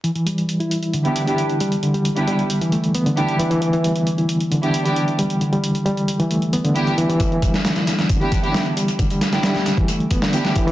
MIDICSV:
0, 0, Header, 1, 4, 480
1, 0, Start_track
1, 0, Tempo, 447761
1, 41, Time_signature, 4, 2, 24, 8
1, 11489, End_track
2, 0, Start_track
2, 0, Title_t, "String section"
2, 0, Program_c, 0, 48
2, 1122, Note_on_c, 0, 64, 66
2, 1123, Note_on_c, 0, 59, 77
2, 1123, Note_on_c, 0, 62, 66
2, 1123, Note_on_c, 0, 67, 84
2, 1296, Note_off_c, 0, 64, 0
2, 1297, Note_off_c, 0, 59, 0
2, 1297, Note_off_c, 0, 62, 0
2, 1297, Note_off_c, 0, 67, 0
2, 1361, Note_on_c, 0, 64, 82
2, 1361, Note_on_c, 0, 67, 96
2, 1362, Note_on_c, 0, 62, 82
2, 1363, Note_on_c, 0, 59, 83
2, 1469, Note_off_c, 0, 64, 0
2, 1469, Note_off_c, 0, 67, 0
2, 1470, Note_off_c, 0, 59, 0
2, 1470, Note_off_c, 0, 62, 0
2, 2319, Note_on_c, 0, 59, 77
2, 2319, Note_on_c, 0, 62, 69
2, 2319, Note_on_c, 0, 64, 71
2, 2319, Note_on_c, 0, 67, 85
2, 2495, Note_off_c, 0, 59, 0
2, 2495, Note_off_c, 0, 62, 0
2, 2495, Note_off_c, 0, 64, 0
2, 2495, Note_off_c, 0, 67, 0
2, 3396, Note_on_c, 0, 67, 101
2, 3397, Note_on_c, 0, 62, 85
2, 3397, Note_on_c, 0, 64, 80
2, 3398, Note_on_c, 0, 59, 90
2, 3575, Note_off_c, 0, 62, 0
2, 3575, Note_off_c, 0, 67, 0
2, 3576, Note_off_c, 0, 59, 0
2, 3576, Note_off_c, 0, 64, 0
2, 4961, Note_on_c, 0, 59, 78
2, 4961, Note_on_c, 0, 64, 69
2, 4962, Note_on_c, 0, 62, 70
2, 4962, Note_on_c, 0, 67, 84
2, 5136, Note_off_c, 0, 59, 0
2, 5136, Note_off_c, 0, 62, 0
2, 5136, Note_off_c, 0, 64, 0
2, 5137, Note_off_c, 0, 67, 0
2, 5202, Note_on_c, 0, 64, 78
2, 5203, Note_on_c, 0, 59, 85
2, 5203, Note_on_c, 0, 62, 84
2, 5204, Note_on_c, 0, 67, 92
2, 5310, Note_off_c, 0, 62, 0
2, 5310, Note_off_c, 0, 64, 0
2, 5311, Note_off_c, 0, 59, 0
2, 5311, Note_off_c, 0, 67, 0
2, 7240, Note_on_c, 0, 59, 90
2, 7241, Note_on_c, 0, 62, 82
2, 7241, Note_on_c, 0, 67, 96
2, 7242, Note_on_c, 0, 64, 84
2, 7417, Note_off_c, 0, 59, 0
2, 7417, Note_off_c, 0, 67, 0
2, 7418, Note_off_c, 0, 62, 0
2, 7418, Note_off_c, 0, 64, 0
2, 8804, Note_on_c, 0, 62, 70
2, 8804, Note_on_c, 0, 64, 71
2, 8805, Note_on_c, 0, 59, 74
2, 8806, Note_on_c, 0, 67, 88
2, 8977, Note_off_c, 0, 64, 0
2, 8978, Note_off_c, 0, 59, 0
2, 8978, Note_off_c, 0, 62, 0
2, 8978, Note_off_c, 0, 67, 0
2, 9041, Note_on_c, 0, 59, 88
2, 9042, Note_on_c, 0, 62, 80
2, 9042, Note_on_c, 0, 64, 82
2, 9042, Note_on_c, 0, 67, 96
2, 9150, Note_off_c, 0, 59, 0
2, 9150, Note_off_c, 0, 62, 0
2, 9150, Note_off_c, 0, 64, 0
2, 9150, Note_off_c, 0, 67, 0
2, 10000, Note_on_c, 0, 64, 72
2, 10001, Note_on_c, 0, 59, 79
2, 10002, Note_on_c, 0, 62, 71
2, 10002, Note_on_c, 0, 67, 85
2, 10176, Note_off_c, 0, 59, 0
2, 10176, Note_off_c, 0, 62, 0
2, 10176, Note_off_c, 0, 64, 0
2, 10177, Note_off_c, 0, 67, 0
2, 11078, Note_on_c, 0, 67, 103
2, 11080, Note_on_c, 0, 59, 89
2, 11080, Note_on_c, 0, 62, 86
2, 11080, Note_on_c, 0, 64, 82
2, 11256, Note_off_c, 0, 67, 0
2, 11257, Note_off_c, 0, 59, 0
2, 11257, Note_off_c, 0, 62, 0
2, 11257, Note_off_c, 0, 64, 0
2, 11489, End_track
3, 0, Start_track
3, 0, Title_t, "Reed electric piano"
3, 0, Program_c, 1, 4
3, 40, Note_on_c, 1, 52, 74
3, 106, Note_off_c, 1, 52, 0
3, 165, Note_on_c, 1, 52, 69
3, 263, Control_c, 1, 64, 127
3, 269, Note_off_c, 1, 52, 0
3, 281, Note_on_c, 1, 55, 66
3, 631, Note_off_c, 1, 55, 0
3, 643, Note_on_c, 1, 64, 69
3, 749, Note_off_c, 1, 64, 0
3, 1004, Note_on_c, 1, 50, 77
3, 1471, Note_off_c, 1, 50, 0
3, 1722, Note_on_c, 1, 55, 97
3, 1949, Note_off_c, 1, 55, 0
3, 1958, Note_on_c, 1, 50, 75
3, 2070, Note_off_c, 1, 50, 0
3, 2082, Note_on_c, 1, 55, 71
3, 2428, Note_off_c, 1, 55, 0
3, 2439, Note_on_c, 1, 55, 91
3, 2506, Note_off_c, 1, 55, 0
3, 2802, Note_on_c, 1, 52, 94
3, 2908, Note_off_c, 1, 52, 0
3, 2918, Note_on_c, 1, 57, 73
3, 3029, Note_off_c, 1, 57, 0
3, 3158, Note_on_c, 1, 59, 91
3, 3225, Note_off_c, 1, 59, 0
3, 3280, Note_on_c, 1, 50, 93
3, 3387, Note_off_c, 1, 50, 0
3, 3637, Note_on_c, 1, 52, 97
3, 3748, Note_off_c, 1, 52, 0
3, 3760, Note_on_c, 1, 52, 91
3, 3864, Note_off_c, 1, 52, 0
3, 3877, Note_on_c, 1, 52, 75
3, 3945, Note_off_c, 1, 52, 0
3, 4002, Note_on_c, 1, 52, 72
3, 4108, Note_off_c, 1, 52, 0
3, 4118, Note_on_c, 1, 55, 68
3, 4470, Note_off_c, 1, 55, 0
3, 4483, Note_on_c, 1, 64, 68
3, 4588, Note_off_c, 1, 64, 0
3, 4840, Note_on_c, 1, 50, 75
3, 5309, Note_off_c, 1, 50, 0
3, 5560, Note_on_c, 1, 55, 96
3, 5788, Note_off_c, 1, 55, 0
3, 5800, Note_on_c, 1, 50, 72
3, 5911, Note_off_c, 1, 50, 0
3, 5922, Note_on_c, 1, 55, 72
3, 6266, Note_off_c, 1, 55, 0
3, 6278, Note_on_c, 1, 55, 97
3, 6345, Note_off_c, 1, 55, 0
3, 6641, Note_on_c, 1, 52, 96
3, 6748, Note_off_c, 1, 52, 0
3, 6759, Note_on_c, 1, 57, 73
3, 6870, Note_off_c, 1, 57, 0
3, 7001, Note_on_c, 1, 59, 90
3, 7067, Note_off_c, 1, 59, 0
3, 7123, Note_on_c, 1, 50, 92
3, 7228, Note_off_c, 1, 50, 0
3, 7482, Note_on_c, 1, 52, 98
3, 7591, Note_off_c, 1, 52, 0
3, 7605, Note_on_c, 1, 52, 97
3, 7709, Note_off_c, 1, 52, 0
3, 7723, Note_on_c, 1, 52, 73
3, 7788, Note_off_c, 1, 52, 0
3, 7847, Note_on_c, 1, 52, 68
3, 7951, Note_off_c, 1, 52, 0
3, 7967, Note_on_c, 1, 55, 70
3, 8314, Note_off_c, 1, 55, 0
3, 8326, Note_on_c, 1, 64, 66
3, 8430, Note_off_c, 1, 64, 0
3, 8683, Note_on_c, 1, 50, 78
3, 9150, Note_off_c, 1, 50, 0
3, 9398, Note_on_c, 1, 55, 95
3, 9627, Note_off_c, 1, 55, 0
3, 9642, Note_on_c, 1, 50, 73
3, 9752, Note_off_c, 1, 50, 0
3, 9766, Note_on_c, 1, 55, 72
3, 10108, Note_off_c, 1, 55, 0
3, 10121, Note_on_c, 1, 55, 95
3, 10187, Note_off_c, 1, 55, 0
3, 10483, Note_on_c, 1, 52, 102
3, 10588, Note_off_c, 1, 52, 0
3, 10602, Note_on_c, 1, 57, 75
3, 10711, Note_off_c, 1, 57, 0
3, 10842, Note_on_c, 1, 59, 94
3, 10907, Note_off_c, 1, 59, 0
3, 10965, Note_on_c, 1, 50, 95
3, 11069, Note_off_c, 1, 50, 0
3, 11318, Note_on_c, 1, 52, 104
3, 11429, Note_off_c, 1, 52, 0
3, 11440, Note_on_c, 1, 52, 98
3, 11489, Note_off_c, 1, 52, 0
3, 11489, End_track
4, 0, Start_track
4, 0, Title_t, "Drums"
4, 43, Note_on_c, 9, 42, 38
4, 150, Note_off_c, 9, 42, 0
4, 166, Note_on_c, 9, 42, 19
4, 273, Note_off_c, 9, 42, 0
4, 285, Note_on_c, 9, 42, 67
4, 392, Note_off_c, 9, 42, 0
4, 409, Note_on_c, 9, 42, 29
4, 516, Note_off_c, 9, 42, 0
4, 524, Note_on_c, 9, 42, 41
4, 631, Note_off_c, 9, 42, 0
4, 647, Note_on_c, 9, 42, 19
4, 754, Note_off_c, 9, 42, 0
4, 764, Note_on_c, 9, 42, 69
4, 871, Note_off_c, 9, 42, 0
4, 885, Note_on_c, 9, 42, 28
4, 993, Note_off_c, 9, 42, 0
4, 1002, Note_on_c, 9, 42, 40
4, 1109, Note_off_c, 9, 42, 0
4, 1125, Note_on_c, 9, 42, 20
4, 1232, Note_off_c, 9, 42, 0
4, 1241, Note_on_c, 9, 42, 73
4, 1348, Note_off_c, 9, 42, 0
4, 1366, Note_on_c, 9, 42, 29
4, 1473, Note_off_c, 9, 42, 0
4, 1481, Note_on_c, 9, 42, 43
4, 1588, Note_off_c, 9, 42, 0
4, 1602, Note_on_c, 9, 42, 19
4, 1710, Note_off_c, 9, 42, 0
4, 1719, Note_on_c, 9, 42, 67
4, 1826, Note_off_c, 9, 42, 0
4, 1842, Note_on_c, 9, 42, 29
4, 1949, Note_off_c, 9, 42, 0
4, 1960, Note_on_c, 9, 42, 40
4, 2067, Note_off_c, 9, 42, 0
4, 2083, Note_on_c, 9, 42, 21
4, 2190, Note_off_c, 9, 42, 0
4, 2198, Note_on_c, 9, 42, 66
4, 2306, Note_off_c, 9, 42, 0
4, 2321, Note_on_c, 9, 42, 29
4, 2429, Note_off_c, 9, 42, 0
4, 2439, Note_on_c, 9, 42, 41
4, 2546, Note_off_c, 9, 42, 0
4, 2562, Note_on_c, 9, 42, 20
4, 2669, Note_off_c, 9, 42, 0
4, 2679, Note_on_c, 9, 42, 73
4, 2786, Note_off_c, 9, 42, 0
4, 2803, Note_on_c, 9, 42, 30
4, 2910, Note_off_c, 9, 42, 0
4, 2918, Note_on_c, 9, 42, 40
4, 3026, Note_off_c, 9, 42, 0
4, 3041, Note_on_c, 9, 42, 21
4, 3148, Note_off_c, 9, 42, 0
4, 3157, Note_on_c, 9, 42, 70
4, 3264, Note_off_c, 9, 42, 0
4, 3281, Note_on_c, 9, 42, 30
4, 3389, Note_off_c, 9, 42, 0
4, 3400, Note_on_c, 9, 42, 40
4, 3507, Note_off_c, 9, 42, 0
4, 3521, Note_on_c, 9, 42, 19
4, 3628, Note_off_c, 9, 42, 0
4, 3639, Note_on_c, 9, 42, 70
4, 3746, Note_off_c, 9, 42, 0
4, 3761, Note_on_c, 9, 42, 31
4, 3868, Note_off_c, 9, 42, 0
4, 3879, Note_on_c, 9, 42, 40
4, 3986, Note_off_c, 9, 42, 0
4, 4000, Note_on_c, 9, 42, 20
4, 4107, Note_off_c, 9, 42, 0
4, 4120, Note_on_c, 9, 42, 66
4, 4227, Note_off_c, 9, 42, 0
4, 4241, Note_on_c, 9, 42, 29
4, 4348, Note_off_c, 9, 42, 0
4, 4361, Note_on_c, 9, 42, 39
4, 4468, Note_off_c, 9, 42, 0
4, 4483, Note_on_c, 9, 42, 20
4, 4591, Note_off_c, 9, 42, 0
4, 4598, Note_on_c, 9, 42, 69
4, 4706, Note_off_c, 9, 42, 0
4, 4722, Note_on_c, 9, 42, 29
4, 4829, Note_off_c, 9, 42, 0
4, 4841, Note_on_c, 9, 42, 39
4, 4948, Note_off_c, 9, 42, 0
4, 4964, Note_on_c, 9, 42, 20
4, 5071, Note_off_c, 9, 42, 0
4, 5081, Note_on_c, 9, 42, 69
4, 5188, Note_off_c, 9, 42, 0
4, 5204, Note_on_c, 9, 42, 29
4, 5311, Note_off_c, 9, 42, 0
4, 5321, Note_on_c, 9, 42, 40
4, 5428, Note_off_c, 9, 42, 0
4, 5444, Note_on_c, 9, 42, 20
4, 5551, Note_off_c, 9, 42, 0
4, 5560, Note_on_c, 9, 42, 70
4, 5667, Note_off_c, 9, 42, 0
4, 5682, Note_on_c, 9, 42, 30
4, 5789, Note_off_c, 9, 42, 0
4, 5800, Note_on_c, 9, 42, 38
4, 5908, Note_off_c, 9, 42, 0
4, 5925, Note_on_c, 9, 42, 19
4, 6032, Note_off_c, 9, 42, 0
4, 6043, Note_on_c, 9, 42, 65
4, 6150, Note_off_c, 9, 42, 0
4, 6163, Note_on_c, 9, 42, 28
4, 6270, Note_off_c, 9, 42, 0
4, 6281, Note_on_c, 9, 42, 37
4, 6388, Note_off_c, 9, 42, 0
4, 6404, Note_on_c, 9, 42, 19
4, 6511, Note_off_c, 9, 42, 0
4, 6520, Note_on_c, 9, 42, 64
4, 6628, Note_off_c, 9, 42, 0
4, 6643, Note_on_c, 9, 42, 27
4, 6750, Note_off_c, 9, 42, 0
4, 6761, Note_on_c, 9, 42, 37
4, 6868, Note_off_c, 9, 42, 0
4, 6883, Note_on_c, 9, 42, 18
4, 6990, Note_off_c, 9, 42, 0
4, 7000, Note_on_c, 9, 42, 66
4, 7107, Note_off_c, 9, 42, 0
4, 7124, Note_on_c, 9, 42, 28
4, 7231, Note_off_c, 9, 42, 0
4, 7242, Note_on_c, 9, 42, 38
4, 7349, Note_off_c, 9, 42, 0
4, 7364, Note_on_c, 9, 42, 18
4, 7471, Note_off_c, 9, 42, 0
4, 7482, Note_on_c, 9, 42, 65
4, 7589, Note_off_c, 9, 42, 0
4, 7606, Note_on_c, 9, 42, 28
4, 7713, Note_off_c, 9, 42, 0
4, 7716, Note_on_c, 9, 42, 80
4, 7719, Note_on_c, 9, 36, 102
4, 7723, Note_off_c, 9, 42, 0
4, 7723, Note_on_c, 9, 42, 36
4, 7826, Note_off_c, 9, 36, 0
4, 7830, Note_off_c, 9, 42, 0
4, 7847, Note_on_c, 9, 42, 19
4, 7955, Note_off_c, 9, 42, 0
4, 7958, Note_on_c, 9, 42, 64
4, 7959, Note_on_c, 9, 36, 85
4, 7965, Note_off_c, 9, 42, 0
4, 7965, Note_on_c, 9, 42, 64
4, 8066, Note_off_c, 9, 36, 0
4, 8072, Note_off_c, 9, 42, 0
4, 8083, Note_on_c, 9, 38, 53
4, 8086, Note_on_c, 9, 42, 28
4, 8190, Note_off_c, 9, 38, 0
4, 8193, Note_off_c, 9, 42, 0
4, 8198, Note_on_c, 9, 38, 108
4, 8198, Note_on_c, 9, 42, 78
4, 8202, Note_off_c, 9, 42, 0
4, 8202, Note_on_c, 9, 42, 36
4, 8306, Note_off_c, 9, 38, 0
4, 8310, Note_off_c, 9, 42, 0
4, 8321, Note_on_c, 9, 38, 43
4, 8325, Note_on_c, 9, 42, 18
4, 8428, Note_off_c, 9, 38, 0
4, 8432, Note_off_c, 9, 42, 0
4, 8440, Note_on_c, 9, 38, 45
4, 8440, Note_on_c, 9, 42, 63
4, 8441, Note_off_c, 9, 42, 0
4, 8441, Note_on_c, 9, 42, 64
4, 8547, Note_off_c, 9, 38, 0
4, 8548, Note_off_c, 9, 42, 0
4, 8561, Note_on_c, 9, 38, 39
4, 8563, Note_on_c, 9, 42, 27
4, 8668, Note_off_c, 9, 38, 0
4, 8670, Note_off_c, 9, 42, 0
4, 8677, Note_on_c, 9, 42, 84
4, 8678, Note_on_c, 9, 36, 103
4, 8679, Note_off_c, 9, 42, 0
4, 8679, Note_on_c, 9, 42, 36
4, 8786, Note_off_c, 9, 36, 0
4, 8787, Note_off_c, 9, 42, 0
4, 8803, Note_on_c, 9, 42, 18
4, 8910, Note_off_c, 9, 42, 0
4, 8917, Note_on_c, 9, 42, 59
4, 8918, Note_on_c, 9, 36, 88
4, 9025, Note_off_c, 9, 36, 0
4, 9025, Note_off_c, 9, 42, 0
4, 9043, Note_on_c, 9, 42, 27
4, 9150, Note_off_c, 9, 42, 0
4, 9159, Note_on_c, 9, 38, 107
4, 9159, Note_on_c, 9, 42, 39
4, 9266, Note_off_c, 9, 38, 0
4, 9266, Note_off_c, 9, 42, 0
4, 9283, Note_on_c, 9, 42, 19
4, 9390, Note_off_c, 9, 42, 0
4, 9400, Note_on_c, 9, 42, 62
4, 9401, Note_off_c, 9, 42, 0
4, 9401, Note_on_c, 9, 42, 63
4, 9509, Note_off_c, 9, 42, 0
4, 9521, Note_on_c, 9, 42, 42
4, 9523, Note_off_c, 9, 42, 0
4, 9523, Note_on_c, 9, 42, 28
4, 9631, Note_off_c, 9, 42, 0
4, 9637, Note_on_c, 9, 42, 76
4, 9638, Note_on_c, 9, 36, 97
4, 9640, Note_off_c, 9, 42, 0
4, 9640, Note_on_c, 9, 42, 39
4, 9745, Note_off_c, 9, 36, 0
4, 9747, Note_off_c, 9, 42, 0
4, 9759, Note_on_c, 9, 42, 39
4, 9760, Note_off_c, 9, 42, 0
4, 9760, Note_on_c, 9, 42, 19
4, 9867, Note_off_c, 9, 42, 0
4, 9877, Note_on_c, 9, 38, 51
4, 9877, Note_on_c, 9, 42, 67
4, 9879, Note_off_c, 9, 42, 0
4, 9879, Note_on_c, 9, 42, 62
4, 9984, Note_off_c, 9, 38, 0
4, 9986, Note_off_c, 9, 42, 0
4, 9998, Note_on_c, 9, 38, 51
4, 10000, Note_on_c, 9, 42, 29
4, 10105, Note_off_c, 9, 38, 0
4, 10108, Note_off_c, 9, 42, 0
4, 10112, Note_on_c, 9, 38, 103
4, 10112, Note_on_c, 9, 42, 84
4, 10116, Note_off_c, 9, 42, 0
4, 10116, Note_on_c, 9, 42, 36
4, 10220, Note_off_c, 9, 38, 0
4, 10223, Note_off_c, 9, 42, 0
4, 10235, Note_on_c, 9, 38, 39
4, 10240, Note_on_c, 9, 42, 18
4, 10342, Note_off_c, 9, 38, 0
4, 10347, Note_off_c, 9, 42, 0
4, 10356, Note_on_c, 9, 38, 42
4, 10356, Note_on_c, 9, 42, 63
4, 10358, Note_off_c, 9, 42, 0
4, 10358, Note_on_c, 9, 42, 66
4, 10463, Note_off_c, 9, 38, 0
4, 10465, Note_off_c, 9, 42, 0
4, 10479, Note_on_c, 9, 36, 85
4, 10483, Note_on_c, 9, 42, 26
4, 10586, Note_off_c, 9, 36, 0
4, 10590, Note_off_c, 9, 42, 0
4, 10594, Note_on_c, 9, 42, 83
4, 10600, Note_off_c, 9, 42, 0
4, 10600, Note_on_c, 9, 42, 37
4, 10707, Note_off_c, 9, 42, 0
4, 10723, Note_on_c, 9, 42, 19
4, 10830, Note_off_c, 9, 42, 0
4, 10833, Note_on_c, 9, 42, 61
4, 10837, Note_on_c, 9, 36, 85
4, 10839, Note_off_c, 9, 42, 0
4, 10839, Note_on_c, 9, 42, 67
4, 10944, Note_off_c, 9, 36, 0
4, 10946, Note_off_c, 9, 42, 0
4, 10956, Note_on_c, 9, 38, 112
4, 10964, Note_on_c, 9, 42, 28
4, 11063, Note_off_c, 9, 38, 0
4, 11071, Note_off_c, 9, 42, 0
4, 11074, Note_on_c, 9, 42, 81
4, 11081, Note_off_c, 9, 42, 0
4, 11081, Note_on_c, 9, 42, 39
4, 11188, Note_off_c, 9, 42, 0
4, 11198, Note_on_c, 9, 38, 49
4, 11202, Note_on_c, 9, 42, 19
4, 11306, Note_off_c, 9, 38, 0
4, 11310, Note_off_c, 9, 42, 0
4, 11314, Note_on_c, 9, 42, 63
4, 11317, Note_on_c, 9, 36, 89
4, 11320, Note_off_c, 9, 42, 0
4, 11320, Note_on_c, 9, 42, 66
4, 11425, Note_off_c, 9, 36, 0
4, 11428, Note_off_c, 9, 42, 0
4, 11443, Note_on_c, 9, 42, 28
4, 11489, Note_off_c, 9, 42, 0
4, 11489, End_track
0, 0, End_of_file